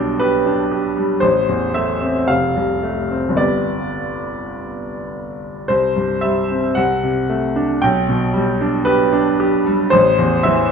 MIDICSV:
0, 0, Header, 1, 2, 480
1, 0, Start_track
1, 0, Tempo, 1013514
1, 576, Tempo, 1060071
1, 577, Time_signature, 2, 2, 24, 8
1, 1056, Tempo, 1109057
1, 1536, Tempo, 1151631
1, 2496, Tempo, 1056338
1, 4781, End_track
2, 0, Start_track
2, 0, Title_t, "Grand piano"
2, 0, Program_c, 0, 0
2, 0, Control_c, 0, 64, 127
2, 0, Note_on_c, 0, 35, 48
2, 0, Note_on_c, 0, 47, 35
2, 0, Note_on_c, 0, 55, 39
2, 0, Note_on_c, 0, 62, 38
2, 0, Note_on_c, 0, 79, 71
2, 51, Note_off_c, 0, 55, 0
2, 91, Note_off_c, 0, 79, 0
2, 92, Note_on_c, 0, 71, 68
2, 101, Note_on_c, 0, 67, 41
2, 169, Note_off_c, 0, 62, 0
2, 219, Note_on_c, 0, 62, 41
2, 288, Note_off_c, 0, 67, 0
2, 338, Note_on_c, 0, 67, 41
2, 409, Note_off_c, 0, 62, 0
2, 457, Note_on_c, 0, 55, 38
2, 530, Note_off_c, 0, 67, 0
2, 553, Note_off_c, 0, 35, 0
2, 570, Note_on_c, 0, 72, 69
2, 576, Note_off_c, 0, 71, 0
2, 578, Note_off_c, 0, 55, 0
2, 578, Note_on_c, 0, 33, 51
2, 584, Control_c, 0, 64, 0
2, 587, Note_off_c, 0, 47, 0
2, 656, Control_c, 0, 64, 127
2, 699, Note_on_c, 0, 40, 38
2, 812, Note_off_c, 0, 72, 0
2, 815, Note_on_c, 0, 76, 71
2, 822, Note_on_c, 0, 57, 38
2, 889, Note_off_c, 0, 40, 0
2, 937, Note_on_c, 0, 60, 36
2, 1012, Note_off_c, 0, 57, 0
2, 1043, Note_off_c, 0, 33, 0
2, 1056, Note_on_c, 0, 77, 72
2, 1057, Note_off_c, 0, 60, 0
2, 1057, Note_off_c, 0, 76, 0
2, 1062, Note_on_c, 0, 29, 47
2, 1064, Control_c, 0, 64, 0
2, 1138, Control_c, 0, 64, 127
2, 1179, Note_on_c, 0, 36, 32
2, 1295, Note_on_c, 0, 57, 35
2, 1367, Note_off_c, 0, 36, 0
2, 1417, Note_on_c, 0, 60, 34
2, 1489, Note_off_c, 0, 57, 0
2, 1495, Note_on_c, 0, 31, 41
2, 1518, Note_on_c, 0, 55, 29
2, 1524, Note_on_c, 0, 59, 31
2, 1526, Note_off_c, 0, 29, 0
2, 1528, Note_on_c, 0, 74, 58
2, 1530, Note_on_c, 0, 67, 31
2, 1537, Note_off_c, 0, 77, 0
2, 1539, Note_off_c, 0, 60, 0
2, 1544, Control_c, 0, 64, 0
2, 1616, Control_c, 0, 64, 127
2, 2022, Note_off_c, 0, 74, 0
2, 2460, Note_off_c, 0, 31, 0
2, 2470, Note_off_c, 0, 55, 0
2, 2473, Note_off_c, 0, 59, 0
2, 2476, Note_off_c, 0, 67, 0
2, 2493, Note_on_c, 0, 72, 65
2, 2499, Note_on_c, 0, 36, 44
2, 2505, Control_c, 0, 64, 0
2, 2586, Control_c, 0, 64, 127
2, 2621, Note_on_c, 0, 43, 33
2, 2734, Note_on_c, 0, 76, 65
2, 2738, Note_off_c, 0, 72, 0
2, 2743, Note_on_c, 0, 55, 37
2, 2814, Note_off_c, 0, 43, 0
2, 2869, Note_on_c, 0, 60, 37
2, 2935, Note_off_c, 0, 55, 0
2, 2968, Note_off_c, 0, 36, 0
2, 2978, Note_on_c, 0, 78, 72
2, 2979, Note_off_c, 0, 76, 0
2, 2986, Note_off_c, 0, 60, 0
2, 2987, Note_on_c, 0, 36, 48
2, 2990, Control_c, 0, 64, 0
2, 3067, Control_c, 0, 64, 127
2, 3107, Note_on_c, 0, 48, 36
2, 3225, Note_on_c, 0, 57, 42
2, 3296, Note_off_c, 0, 48, 0
2, 3345, Note_on_c, 0, 62, 43
2, 3415, Note_off_c, 0, 57, 0
2, 3450, Note_off_c, 0, 36, 0
2, 3460, Note_off_c, 0, 78, 0
2, 3463, Note_on_c, 0, 79, 87
2, 3464, Note_off_c, 0, 62, 0
2, 3470, Note_on_c, 0, 35, 55
2, 3471, Control_c, 0, 64, 0
2, 3552, Control_c, 0, 64, 127
2, 3586, Note_on_c, 0, 47, 43
2, 3699, Note_on_c, 0, 55, 48
2, 3775, Note_off_c, 0, 47, 0
2, 3824, Note_on_c, 0, 62, 45
2, 3891, Note_off_c, 0, 55, 0
2, 3932, Note_on_c, 0, 71, 85
2, 3940, Note_off_c, 0, 79, 0
2, 3941, Note_on_c, 0, 67, 53
2, 4011, Note_off_c, 0, 62, 0
2, 4059, Note_on_c, 0, 62, 50
2, 4129, Note_off_c, 0, 67, 0
2, 4182, Note_on_c, 0, 67, 53
2, 4248, Note_off_c, 0, 62, 0
2, 4302, Note_on_c, 0, 55, 55
2, 4369, Note_off_c, 0, 67, 0
2, 4400, Note_off_c, 0, 35, 0
2, 4410, Note_off_c, 0, 71, 0
2, 4411, Note_on_c, 0, 72, 89
2, 4418, Note_off_c, 0, 55, 0
2, 4422, Note_on_c, 0, 33, 63
2, 4423, Control_c, 0, 64, 0
2, 4494, Control_c, 0, 64, 127
2, 4539, Note_on_c, 0, 40, 51
2, 4652, Note_off_c, 0, 72, 0
2, 4652, Note_on_c, 0, 76, 90
2, 4661, Note_on_c, 0, 52, 51
2, 4729, Note_off_c, 0, 40, 0
2, 4781, Note_off_c, 0, 33, 0
2, 4781, Note_off_c, 0, 52, 0
2, 4781, Note_off_c, 0, 76, 0
2, 4781, End_track
0, 0, End_of_file